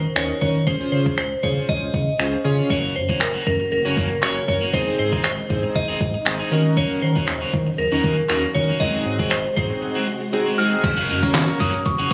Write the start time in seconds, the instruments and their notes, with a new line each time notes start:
Already playing: synth bell C5
0.16 analog synth bass D#2, analog polysynth C#4 D#4 F#4 A#4, synth bell C#5, finger snap
0.41 analog synth bass D#3, analog polysynth C#4 D#4 F#4 A#4, synth bell C#5, kick
0.67 analog synth bass C#2, analog polysynth C#4 F4 G#4 C5, synth bell C5, kick
0.80 analog polysynth C#4 F4 G#4 C5
0.92 analog synth bass C#3, synth bell C5
1.06 kick
1.18 analog synth bass C#2, synth bell C5, finger snap
1.43 analog synth bass C#3, analog polysynth C#4 F4 G#4 C5, synth bell C#5, kick
1.69 analog synth bass C#2, synth bell D#5, kick
1.82 analog synth bass C#2
1.94 analog synth bass C#3, kick
2.19 analog synth bass C#2, analog polysynth C#4 F4 G#4 C5, finger snap
2.44 analog synth bass C#3, analog polysynth C#4 F4 G#4 C#5
2.70 analog synth bass F#1, string machine C#3 A#3 F#4, clean electric guitar A#3 C#4 F#4, synth bell C#5, kick
2.95 analog synth bass F#2, synth bell C5, muted clean electric guitar stroke
3.09 clean electric guitar A#3 C#4 F#4, kick
3.21 analog synth bass F#1, synth bell A#4, finger snap, muted clean electric guitar stroke, clap
3.34 clean electric guitar A#3 C#4 F#4
3.46 analog synth bass F#2, synth bell A#4, muted clean electric guitar stroke, kick
3.60 muted clean electric guitar stroke
3.72 analog synth bass F#1, synth bell A#4, muted clean electric guitar stroke
3.85 analog synth bass F#1, clean electric guitar A#3 C#4 F#4, analog polysynth C#4 F#4 A#4 C#5
3.97 analog synth bass F#2, clean electric guitar A#3 C#4 F#4, kick
4.11 muted clean electric guitar stroke
4.22 analog synth bass F#1, clean electric guitar A#3 C#4 F#4, analog polysynth C#4 F#4 A#4 C#5, synth bell C#5, finger snap, clap
4.36 muted clean electric guitar stroke
4.48 analog synth bass F#2, analog polysynth C#4 F#4 A#4 C#5, synth bell C#5, muted clean electric guitar stroke, kick
4.61 clean electric guitar A#3 C#4 F#4
4.73 analog synth bass G#1, string machine C3 G#3 D#4, clean electric guitar C4 D#4 G#4, analog polysynth C4 D#4 G#4 C5, synth bell C5, kick
4.87 analog polysynth C4 D#4 G#4 C5
4.99 analog synth bass G#2, synth bell C5, muted clean electric guitar stroke
5.12 clean electric guitar C4 D#4 G#4, kick
5.24 analog synth bass G#1, synth bell C5, finger snap, muted clean electric guitar stroke, clap
5.38 muted clean electric guitar stroke
5.50 analog synth bass G#2, analog polysynth C4 D#4 G#4 C5, kick
5.63 muted clean electric guitar stroke
5.75 analog synth bass G#1, synth bell D#5, muted clean electric guitar stroke, kick
5.88 analog synth bass G#1, clean electric guitar C4 D#4 G#4
6.01 analog synth bass G#2, muted clean electric guitar stroke, kick
6.14 muted clean electric guitar stroke
6.26 analog synth bass G#1, analog polysynth C4 D#4 G#4 C5, finger snap, muted clean electric guitar stroke, clap
6.39 clean electric guitar C4 D#4 G#4
6.51 string machine C#3 F#3, analog synth bass D#3, clean electric guitar A#3 C#4 F#4, analog polysynth C#4 D#4 F#4 A#4
6.65 muted clean electric guitar stroke
6.76 clean electric guitar A#3 C#4 F#4, synth bell C#5, kick
7.02 analog synth bass D#3, synth bell C5, muted clean electric guitar stroke
7.15 clean electric guitar A#3 C#4 F#4, kick
7.28 analog synth bass D#2, finger snap, muted clean electric guitar stroke, clap
7.41 clean electric guitar A#3 C#4 F#4
7.53 analog synth bass D#3, muted clean electric guitar stroke, kick
7.67 muted clean electric guitar stroke
7.78 analog synth bass D#2, synth bell A#4, muted clean electric guitar stroke
7.92 analog synth bass D#2, clean electric guitar A#3 C#4 F#4, analog polysynth C#4 D#4 F#4 A#4
8.04 analog synth bass D#3, clean electric guitar A#3 C#4 F#4, kick
8.17 muted clean electric guitar stroke
8.29 analog synth bass D#2, clean electric guitar A#3 C#4 F#4, analog polysynth C#4 D#4 F#4 A#4, synth bell A#4, finger snap, clap
8.43 muted clean electric guitar stroke
8.54 analog synth bass D#3, analog polysynth C#4 D#4 F#4 A#4, synth bell C#5, muted clean electric guitar stroke, kick
8.68 clean electric guitar A#3 C#4 F#4
8.80 analog synth bass G#1, string machine C3 G#3 F#4, clean electric guitar G#3 C4 F#4, analog polysynth C4 D#4 F#4 G#4, synth bell D#5, kick
8.94 analog polysynth C4 D#4 F#4 G#4
9.06 analog synth bass G#2, muted clean electric guitar stroke
9.19 clean electric guitar G#3 C4 F#4, kick
9.31 analog synth bass G#1, synth bell C5, finger snap, muted clean electric guitar stroke, clap
9.44 muted clean electric guitar stroke
9.56 analog synth bass G#2, analog polysynth C4 D#4 F#4 G#4, synth bell C5, kick
9.70 muted clean electric guitar stroke
9.82 muted clean electric guitar stroke
9.95 clean electric guitar G#3 C4 F#4
10.07 muted clean electric guitar stroke
10.21 muted clean electric guitar stroke
10.33 analog polysynth C4 D#4 F#4 G#4, muted clean electric guitar stroke
10.46 clean electric guitar G#3 C4 F#4
10.58 clean electric guitar G#3 C4 F#4, analog polysynth C4 D#4 F#4 G#4, synth bell F6
10.72 muted clean electric guitar stroke
10.84 analog synth bass F#1, string machine C#3 A#3 F#4, muted clean electric guitar stroke, kick, closed hi-hat, crash
10.97 clean electric guitar A#3 C#4 F#4, closed hi-hat
11.09 analog synth bass F#2, clean electric guitar A#3 C#4 F#4, closed hi-hat
11.22 analog polysynth A#3 C#4 F#4 A#4 C#5, muted clean electric guitar stroke, kick, closed hi-hat
11.34 analog synth bass F#1, snare, clap, closed hi-hat
11.48 muted clean electric guitar stroke, closed hi-hat
11.59 analog synth bass F#2, clean electric guitar A#3 C#4 F#4, synth bell D#6, kick, closed hi-hat
11.73 muted clean electric guitar stroke, closed hi-hat
11.85 analog synth bass F#1, synth bell C#6, muted clean electric guitar stroke, kick, closed hi-hat
11.98 analog synth bass F#1, clean electric guitar A#3 C#4 F#4, closed hi-hat